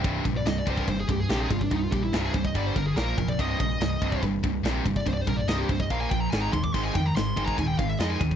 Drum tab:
CC |----------------|----------------|----------------|----------------|
RD |x-x-x-x-x-x-x-x-|x-x-x-x-x-x-x-x-|x-x-x-x-x-x-x-x-|x-x-x-x-x-x-x-x-|
SD |----o-------o---|----o-------o---|----o-------o---|----o-------o---|
BD |o-o---ooo-o---oo|o-o---ooo-o---oo|o-o---ooo-o---oo|o-o---ooo-o---oo|

CC |x---------------|
RD |--x-x-x-x-x-x-x-|
SD |----o-------o---|
BD |o-o---ooo-o---oo|